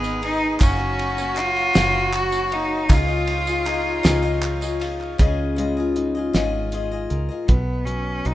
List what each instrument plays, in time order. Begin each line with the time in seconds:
Already playing: fingered electric bass G#1, cello B3, harmonium B3 G#4 A#5, fiddle G#4
0.03 steel-string acoustic guitar G#3 B3 D#4 A#4, tambourine
0.22 steel-string acoustic guitar G#3 B3 D#4 A#4, cello D#4, ride
0.59 fingered electric bass F#1, steel-string acoustic guitar F#2 C#3 F#3 A#3 C#4 F#4, harmonium F#3 C#5, cello C#4, fiddle F#4, kick, clap, ride, tambourine
0.77 steel-string acoustic guitar F#3 A#3 C#4 F#4, clap
0.99 ride, tambourine
1.17 steel-string acoustic guitar F#3 A#3 C#4 F#4, tambourine
1.34 steel-string acoustic guitar F#3 A#3 C#4, clap, ride
1.39 cello F4
1.56 tambourine
1.73 fingered electric bass F#1, steel-string acoustic guitar F#2 C#3 F#3 A#3 C#4 F#4, snare, clap, ride, tambourine
1.92 steel-string acoustic guitar F#3 A#3 C#4 F#4
2.13 cello F#4, clap, ride, tambourine
2.31 steel-string acoustic guitar F#3 A#3 C#4 F#4, tambourine
2.50 steel-string acoustic guitar F#3 A#3 C#4 F#4, cello D#4, ride
2.89 fingered electric bass C#2, steel-string acoustic guitar C#4 F4 G#4 D#5, harmonium D#4 C#5 F5, fiddle F4, kick, clap, ride, tambourine
2.93 cello F4
3.07 steel-string acoustic guitar F4 G#4 D#5
3.27 clap, ride
3.46 steel-string acoustic guitar F4 G#4 D#5, tambourine
3.64 steel-string acoustic guitar C#4 F4 G#4 D#5, fiddle D#4, clap, ride
4.03 fingered electric bass C#2, steel-string acoustic guitar C#4 F4 G#4 D#5, snare, clap, ride, tambourine
4.23 steel-string acoustic guitar F4 G#4 D#5
4.42 clap, ride
4.61 steel-string acoustic guitar F4 G#4 D#5, tambourine
4.80 steel-string acoustic guitar C#4 F4 G#4 D#5, clap, ride, tambourine
5.01 clap
5.18 fingered electric bass C#2, steel-string acoustic guitar C#3 C#4 F4 G#4 D#5, kick, closed hi-hat
5.56 steel-string acoustic guitar G#3 C#4 F4 G#4 D#5, closed hi-hat
5.77 steel-string acoustic guitar F4 G#4 D#5
5.96 steel-string acoustic guitar D#4, closed hi-hat
6.15 steel-string acoustic guitar F4 G#4 D#5
6.33 fingered electric bass G#1, steel-string acoustic guitar G#2 C#4 F4 G#4 D#5, snare, closed hi-hat
6.72 steel-string acoustic guitar C#4 F4 G#4 D#5, closed hi-hat
6.91 steel-string acoustic guitar F4 G#4 D#5
7.10 fingered electric bass C#2, steel-string acoustic guitar A#4, closed hi-hat
7.29 steel-string acoustic guitar F4 G#4 D#5
7.47 fingered electric bass B1, steel-string acoustic guitar B2, cello B3, kick, closed hi-hat
7.85 steel-string acoustic guitar F#3, cello C#4, closed hi-hat
8.25 fingered electric bass B1, cello D#4, closed hi-hat